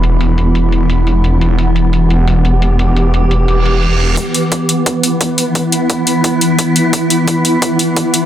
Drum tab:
HH |xxxxxxxx|xxxxxxxx|xxxxxxxx|xxxxxxxx|
BD |--------|--------|--------|o-o-o-o-|

HH |xxxxxxxx|xxxxxxxx|
BD |o-o-o-o-|o-o-o-o-|